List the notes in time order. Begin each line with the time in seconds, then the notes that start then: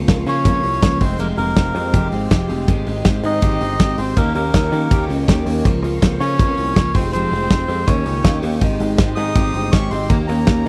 Already playing: F3 A#4 F5 C6 C#6
0.07 C#2 F3 A#3 C4 F4, kick, snare, hi-hat pedal, ride
0.26 C#3 F3 A#3 C4 C#4 F4 C#5, open hi-hat
0.45 C#2 C#3 F3 A#3 C4 C#4 F4, kick, hi-hat pedal, ride
0.63 C2 A#3 C4 F4, open hi-hat
0.82 C#2 F3 A#3 C4 C#4 F4, kick, snare, hi-hat pedal, ride
1.00 F1 F3 G#3 C4 G4 C5 F5 G5, kick, open hi-hat
1.19 F2 C3 F3 G#3 A#3 C4 G4 A#4, hi-hat pedal, ride
1.37 F1 F3 G#3 A#3 C4 G4 A#4, open hi-hat
1.56 F1 F3 G#3 C4 G4, kick, snare, hi-hat pedal, ride
1.75 F2 G#3 C4 G4, open hi-hat
1.79 F3
1.93 F1 F2 C3 F3 G#3 C4 G4, kick, hi-hat pedal, ride
2.12 G#1 F3 G#3 C4 G4, open hi-hat
2.30 F1 F3 G#3 C4 G4, kick, snare, hi-hat pedal, ride
2.48 F1 F3 G#3 C4 G4, open hi-hat
2.68 G#1 D#3 G#3 C4 D#4 G4 D#5 G5 C6, kick, hi-hat pedal, ride
2.87 G#1 G#3 C4 D#4 G4, open hi-hat
3.04 G#1 G#3 C4 D#4 G4, kick, snare, hi-hat pedal, ride
3.24 G#2 G#3 C4 D#4 G4 D#5, open hi-hat
3.42 G#1 G#3 C4 D#4 G4, kick, hi-hat pedal, ride
3.61 G1 D#4 G4, open hi-hat
3.65 C4
3.79 G#1 G#3 C4 D#4 G4, kick, snare, hi-hat pedal, ride
3.98 G#1 G#3 C4 D#4 G4 C5, open hi-hat
4.16 D#2 D#3 A#3 C#4 G4 A#4 C#6, kick, hi-hat pedal, ride
4.35 D#2 A#3 C#4 G4 A#4, open hi-hat
4.54 D#2 D#3 A#3 C#4 G4, kick, snare, hi-hat pedal, ride
4.72 D#3 A#3 C#4 G4, open hi-hat
4.91 D#2 D#3 A#3 C#4 G4, kick, hi-hat pedal, ride
5.09 C#2 A#3 C#4 G4, open hi-hat
5.28 D#2 D#3 A#3 C#4 G4, kick, snare, hi-hat pedal, ride
5.46 D#2 A#3 C#4 G4, open hi-hat
5.65 C#2 C#3 F3 A#3 C4 F4 F5 C6, kick, hi-hat pedal, ride
5.82 C#2 F3 C4 F4, open hi-hat
5.87 A#3
6.02 C#2 F3 A#3 C4 F4, kick, snare, hi-hat pedal, ride
6.20 C#3 F3 C4 C#4 F4 C#5, open hi-hat
6.24 A#3
6.39 C#2 C#3 F3 A#3 C4 C#4 F4, kick, hi-hat pedal, ride
6.58 C2 A#3 C4 F4, open hi-hat
6.76 C#2 F3 A#3 C4 C#4 F4, kick, snare, hi-hat pedal, ride
6.94 F1 F3 C4 G4 G#4 C5 G5, kick, open hi-hat
6.98 F3 G#3
7.13 F2 C3 F3 G#3 C4 G4 C5, hi-hat pedal, ride
7.32 F1 G#3 C4 G4, open hi-hat
7.36 F3
7.50 F1 F3 G#3 C4 G4, kick, snare, hi-hat pedal, ride
7.68 F2 F3 G#3 C4 G4, open hi-hat
7.87 D#2 D#3 A#3 C#4 G4 A#4 C#5 D#5 G5 C#6, kick, hi-hat pedal, ride
8.05 C#2 A#3 C#4 G4, open hi-hat
8.24 D#2 D#3 A#3 C#4 F4 G4, kick, snare, hi-hat pedal, ride
8.34 G4
8.42 D#2 A#3 C#4 G4, open hi-hat
8.61 G#1 D#3 G#3 C4 D#4 G4 D#5 G5 C6, kick, ride
8.80 G#1 G#3 C4 D#4 G4, open hi-hat
8.98 G#1 G#3 C4 D#4, kick, snare, hi-hat pedal, ride
9.03 G4
9.15 G#2 G#3 D#4 G4 D#6, open hi-hat
9.21 C4
9.35 G#1 G#3 C4 D#4 G4, kick, hi-hat pedal, ride
9.54 G1 C4 D#4 G4, open hi-hat
9.72 G#1 G#3 C4 C#4 D#4 C#6, kick, snare, hi-hat pedal, ride
9.76 G4
9.91 G#1 G#3 C4 D#4 G4 C6, open hi-hat
9.95 C4
10.09 D#2 D#3 A#3 C#4 G4 A#4 A#5 C#6, kick, hi-hat pedal, ride
10.27 D#2 A#3 C#4 G4 A#5, open hi-hat
10.47 D#2 D#3 A#3 C#4 G4, kick, snare, hi-hat pedal, ride